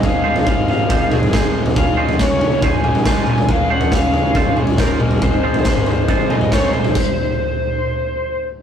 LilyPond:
<<
  \new Staff \with { instrumentName = "Lead electric guitar" } { \time 4/4 \key des \major \tempo 4 = 139 f''4 f''8 f''4 aes'4 r8 | f''8 ees''8 des''4 aes''4. aes''8 | f''8 ges''8 f''4. r8 bes'4 | c''4 c''8 c''4 ees''8 des''8 c''8~ |
c''2.~ c''8 r8 | }
  \new Staff \with { instrumentName = "Transistor combo organ" } { \time 4/4 \key des \major << { <f' aes'' c'''>1~ | <f' aes'' c'''>1~ | <f' aes'' c'''>1~ | <f' aes'' c'''>1 |
r1 | } \\ { ees''1 | des''1~ | des''2.~ des''8 ees''8~ | ees''1 |
r1 | } >> }
  \new Staff \with { instrumentName = "Clean electric guitar" } { \time 4/4 \key des \major r8 <aes ees' f' c''>8 r4 <aes ees' f' c''>8 r8 <aes ees' f' c''>8 r8 | r8 <aes des' f' c''>8 r4 <aes des' f' c''>8 r8 <aes des' f' c''>8 r8 | r8 <aes des' f' c''>8 r4 <aes des' f' c''>8 r8 <aes des' f' c''>8 r8 | r8 <aes ees' f' c''>8 r4 <aes ees' f' c''>8 r8 <aes ees' f' c''>8 r8 |
r1 | }
  \new Staff \with { instrumentName = "Overdriven electric guitar" } { \time 4/4 \key des \major <aes, ees aes c' ees' aes'>8 <aes c' ees' aes'>8 <aes, ees aes c' ees' aes'>8 <aes c' ees' aes'>4 <aes c' ees' aes'>8 <aes c' ees' aes'>4 | <des aes des' f' aes'>8 <des' f' aes'>8 <des aes des' f' aes'>8 <des' f' aes'>4 <des' f' aes'>8 <aes des' f' aes'>4 | <des aes des' f' aes'>8 <des' f' aes'>8 <des aes des' f' aes'>8 <des' f' aes'>4 <des' f' aes'>8 <aes des' f' aes'>8 <aes, ees aes c' ees' aes'>8 | <aes, ees aes c' ees' aes'>8 <aes c' ees' aes'>8 <aes, ees aes c' ees' aes'>8 <aes c' ees' aes'>4 <aes c' ees' aes'>8 <aes c' ees' aes'>4 |
r1 | }
  \new Staff \with { instrumentName = "Picked electric bass" } { \clef bass \time 4/4 \key des \major aes,,8 r16 c,16 r16 aes,4 ees,8 aes,8 r8. | des,8 r16 f,16 r16 des4 aes,,8 des8 r8. | des,8 r16 f,16 r16 des4 aes,,8 bes,,8 r16 aes,,8~ | aes,,8. c,16 r16 aes,4 ees,8 aes,8 r8. |
r1 | }
  \new DrumStaff \with { instrumentName = "Drums" } \drummode { \time 4/4 <bd tomfh>8. tomfh16 bd8 tomfh8 <bd tomfh>8 <tomfh toml>16 tomfh16 <bd sn>8. <tomfh toml>16 | <bd tomfh>8. tomfh16 <bd sn>8 tomfh8 <bd tomfh>8 toml16 tomfh16 <bd sn>8 toml16 <tomfh toml>16 | <bd tomfh>8. tomfh16 <bd sn>8 tomfh8 <bd tomfh>8 toml16 tomfh16 <bd sn>8 toml16 <tomfh toml>16 | <bd tomfh>8. tomfh16 <bd sn>8 tomfh8 <bd tomfh>8 toml16 tomfh16 <bd sn>8 toml16 <tomfh toml>16 |
<cymc bd>4 r4 r4 r4 | }
>>